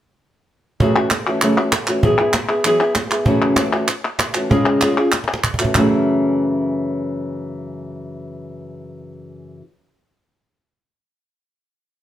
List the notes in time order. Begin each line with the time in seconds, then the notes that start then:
0.80 F#2 C#3 E3 A3 C#4 F#4, cajon bass
0.96 E3 A3 C#4 F#4
1.10 muted nylon-string guitar stroke, cajon slap, clap
1.27 E3 A3 C#4 F#4, clap
1.42 F#2 C#3 E3 A3 C#4 F#4, cajon slap, clap
1.57 E3 A3 C#4 F#4, cajon slap
1.72 muted nylon-string guitar stroke, cajon slap, clap
1.87 E3 A3 C#4 F#4, cajon slap, clap
2.03 E3 F#3 B3 E4 G#4, cajon bass
2.19 B3 E4 G#4
2.33 muted nylon-string guitar stroke, cajon slap, clap
2.48 B3 E4 G#4, clap
2.64 E3 F#3 B3 E4 G#4, cajon slap, clap
2.80 B3 E4 G#4, cajon slap, clap
2.95 muted nylon-string guitar stroke, cajon slap, clap
3.10 B3 E4 G#4, clap
3.25 F#2 C#3 E3 A3 C#4 F#4, cajon bass
3.56 E3 A3 C#4 F#4, cajon slap, clap
3.73 E3 A3 C#4 F#4, clap
3.88 muted nylon-string guitar stroke, cajon slap, clap
4.19 cajon slap, clap
4.34 E3 A3 C#4 F#4, cajon slap, clap
4.49 C#3 G#3 C#4 F4 G#4, cajon bass
4.81 G#3 C#4 F4 G#4, cajon slap, clap
4.97 C#4 F4 G#4, clap
5.12 muted nylon-string guitar stroke, cajon slap, clap
5.24 cajon slap
5.28 clap
5.34 cajon slap
5.44 cajon bass, clap
5.54 cajon bass
5.59 E3 A3 C#4 F#4, clap
5.65 cajon bass
5.75 F#2 C#3 E3 A3 C#4 F#4, cajon bass, clap